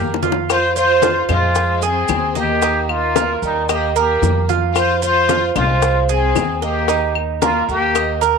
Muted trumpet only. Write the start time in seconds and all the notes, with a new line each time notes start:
Already playing: G4
0.51 C5
0.77 C5
1.30 F4
1.83 G#4
2.37 G4
2.90 F4
3.44 D#4
3.71 G4
3.97 G4
4.77 C5
5.04 C5
5.57 F4
6.10 G#4
6.64 G4
7.43 F4
7.70 G4